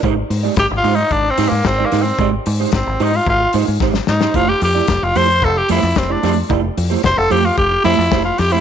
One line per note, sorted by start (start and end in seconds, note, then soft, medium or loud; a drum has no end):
0.03 0.22 G#1 loud
0.03 0.17 G#3 medium
0.03 0.17 D#4 medium
0.03 0.16 G4 medium
0.03 0.16 C5 medium
0.03 kick loud
0.03 closed hi-hat medium
0.17 muted clean electric guitar stroke soft
0.30 0.49 G#2 medium
0.30 muted clean electric guitar stroke soft
0.30 open hi-hat medium
0.43 0.55 G#3 medium
0.43 0.55 D#4 medium
0.43 0.55 G4 medium
0.43 0.54 D5 medium
0.56 0.66 G#1 loud
0.56 0.67 G4 loud
0.56 kick loud
0.56 snare loud
0.56 closed hi-hat medium
0.71 0.80 G#1 medium
0.71 muted clean electric guitar stroke medium
0.77 0.96 F4 loud
0.83 1.03 G#2 medium
0.83 0.97 G#3 medium
0.83 0.97 D#4 medium
0.83 0.97 G4 medium
0.83 0.96 C5 medium
0.83 open hi-hat medium
0.95 1.13 D#4 medium
0.95 muted clean electric guitar stroke soft
1.11 1.29 G#1 medium
1.11 1.31 D4 medium
1.11 kick loud
1.11 closed hi-hat soft
1.24 muted clean electric guitar stroke soft
1.30 1.50 C4 medium
1.37 1.47 G#2 medium
1.37 1.52 G#3 medium
1.37 1.51 D#4 medium
1.37 1.51 G4 medium
1.37 1.51 C5 loud
1.37 open hi-hat medium
1.49 1.61 G#2 medium
1.49 1.69 A#3 medium
1.49 muted clean electric guitar stroke soft
1.65 1.83 G#1 medium
1.65 1.87 C4 medium
1.65 muted clean electric guitar stroke soft
1.65 kick loud
1.65 snare loud
1.65 closed hi-hat medium
1.78 1.90 G#3 soft
1.78 1.90 D#4 soft
1.78 1.90 G4 soft
1.78 1.89 D5 medium
1.85 2.04 A#3 medium
1.92 2.11 G#2 medium
1.92 2.06 G#3 medium
1.92 2.05 D#4 medium
1.92 2.05 G4 medium
1.92 2.04 C5 medium
1.92 snare soft
1.92 open hi-hat medium
2.02 2.29 C4 medium
2.02 muted clean electric guitar stroke soft
2.18 2.37 G#1 loud
2.18 2.33 G#3 medium
2.18 2.33 D#4 medium
2.18 2.32 G4 medium
2.18 2.33 D5 medium
2.18 kick loud
2.18 closed hi-hat medium
2.33 muted clean electric guitar stroke soft
2.46 2.65 G#2 loud
2.46 muted clean electric guitar stroke soft
2.46 open hi-hat medium
2.60 2.71 G#3 medium
2.60 2.71 D#4 medium
2.60 2.71 G4 medium
2.60 2.71 C5 medium
2.72 2.82 G#1 loud
2.72 3.04 C4 medium
2.72 muted clean electric guitar stroke soft
2.72 kick loud
2.72 snare loud
2.72 closed hi-hat medium
2.86 2.96 G#1 medium
2.86 muted clean electric guitar stroke medium
3.00 3.19 G#2 loud
3.00 3.14 G#3 medium
3.00 3.13 D#4 medium
3.00 3.17 D#4 medium
3.00 3.13 G4 medium
3.00 3.13 C5 loud
3.00 open hi-hat medium
3.14 3.28 F4 medium
3.14 muted clean electric guitar stroke soft
3.27 3.45 G#1 loud
3.27 3.53 F4 loud
3.27 kick loud
3.27 closed hi-hat medium
3.40 muted clean electric guitar stroke medium
3.53 3.63 G#2 medium
3.53 3.68 G#3 medium
3.53 3.67 D#4 medium
3.53 3.67 G4 medium
3.53 3.67 C5 medium
3.53 open hi-hat medium
3.68 3.77 G#2 medium
3.68 muted clean electric guitar stroke soft
3.80 3.99 G#1 medium
3.80 3.95 G#3 medium
3.80 3.95 D#4 medium
3.80 3.95 G4 medium
3.80 3.94 C5 medium
3.80 kick loud
3.80 snare medium
3.94 muted clean electric guitar stroke soft
3.94 snare medium
4.07 4.26 G#2 medium
4.07 4.37 D#4 medium
4.07 muted clean electric guitar stroke soft
4.07 snare medium
4.21 4.33 G#3 soft
4.21 4.33 D#4 medium
4.21 4.33 G4 medium
4.21 4.32 C5 medium
4.21 snare loud
4.34 4.53 F1 medium
4.34 4.49 A3 medium
4.34 4.49 E4 medium
4.34 4.51 F4 loud
4.34 4.48 G4 medium
4.34 4.48 C5 medium
4.34 kick medium
4.34 closed hi-hat medium
4.49 4.62 G4 medium
4.49 muted clean electric guitar stroke medium
4.61 4.80 F2 medium
4.61 5.05 G4 medium
4.61 muted clean electric guitar stroke soft
4.61 open hi-hat medium
4.75 4.86 A3 medium
4.75 4.86 E4 medium
4.75 4.86 G4 soft
4.75 4.86 D5 medium
4.87 4.98 F1 loud
4.87 kick loud
4.87 snare loud
4.87 closed hi-hat medium
5.01 5.12 F1 medium
5.01 5.18 F4 loud
5.01 muted clean electric guitar stroke soft
5.15 5.44 F2 medium
5.15 5.29 A3 medium
5.15 5.29 E4 medium
5.15 5.29 G4 medium
5.15 5.28 C5 medium
5.15 5.46 C5 loud
5.15 open hi-hat medium
5.29 muted clean electric guitar stroke soft
5.42 5.61 F1 loud
5.42 5.59 A4 loud
5.42 kick loud
5.42 closed hi-hat medium
5.56 5.70 G4 medium
5.56 muted clean electric guitar stroke soft
5.69 5.79 F2 medium
5.69 5.83 A3 medium
5.69 5.83 E4 medium
5.69 5.99 E4 medium
5.69 5.82 G4 loud
5.69 5.81 C5 loud
5.69 open hi-hat medium
5.83 5.92 F2 medium
5.83 muted clean electric guitar stroke soft
5.95 6.15 F1 loud
5.95 6.13 C4 medium
5.95 muted clean electric guitar stroke soft
5.95 kick loud
5.95 snare loud
5.95 closed hi-hat medium
6.09 6.21 A3 soft
6.09 6.38 D4 medium
6.09 6.21 E4 soft
6.09 6.21 G4 soft
6.09 6.20 D5 soft
6.23 6.42 F2 medium
6.23 6.37 A3 medium
6.23 6.36 E4 medium
6.23 6.35 G4 medium
6.23 6.35 C5 medium
6.23 snare soft
6.23 open hi-hat medium
6.36 muted clean electric guitar stroke medium
6.49 6.69 F1 loud
6.49 6.63 A3 medium
6.49 6.64 E4 medium
6.49 6.63 G4 medium
6.49 6.63 D5 medium
6.49 kick loud
6.49 closed hi-hat medium
6.64 muted clean electric guitar stroke soft
6.77 6.96 F2 medium
6.77 muted clean electric guitar stroke soft
6.77 open hi-hat medium
6.90 7.02 A3 medium
6.90 7.02 E4 medium
6.90 7.01 G4 medium
6.90 7.01 C5 medium
7.03 7.13 F1 loud
7.03 7.19 C5 loud
7.03 muted clean electric guitar stroke soft
7.03 kick loud
7.03 snare loud
7.03 closed hi-hat medium
7.16 7.27 F1 medium
7.16 7.33 A4 loud
7.16 muted clean electric guitar stroke soft
7.30 7.49 F2 loud
7.30 7.44 A3 medium
7.30 7.43 E4 medium
7.30 7.42 G4 medium
7.30 7.47 G4 loud
7.30 7.42 C5 medium
7.30 open hi-hat medium
7.43 7.57 F4 medium
7.43 muted clean electric guitar stroke soft
7.58 7.76 F1 medium
7.58 7.83 G4 loud
7.58 kick loud
7.58 closed hi-hat medium
7.71 muted clean electric guitar stroke soft
7.84 7.94 F2 loud
7.84 7.98 A3 medium
7.84 7.98 E4 medium
7.84 8.22 E4 loud
7.84 7.97 G4 medium
7.84 7.97 C5 medium
7.84 open hi-hat medium
7.98 8.08 F2 loud
7.98 muted clean electric guitar stroke soft
8.11 8.30 F1 loud
8.11 8.25 A3 medium
8.11 8.25 E4 medium
8.11 8.24 G4 medium
8.11 8.24 C5 medium
8.11 kick loud
8.11 snare loud
8.11 closed hi-hat medium
8.24 8.40 F4 medium
8.24 muted clean electric guitar stroke soft
8.38 8.57 F2 loud
8.38 8.53 G4 loud
8.38 muted clean electric guitar stroke soft
8.38 snare soft
8.38 open hi-hat medium
8.52 8.61 A3 medium
8.52 8.61 E4 loud
8.52 8.61 E4 medium
8.52 8.61 G4 medium
8.52 8.61 C5 medium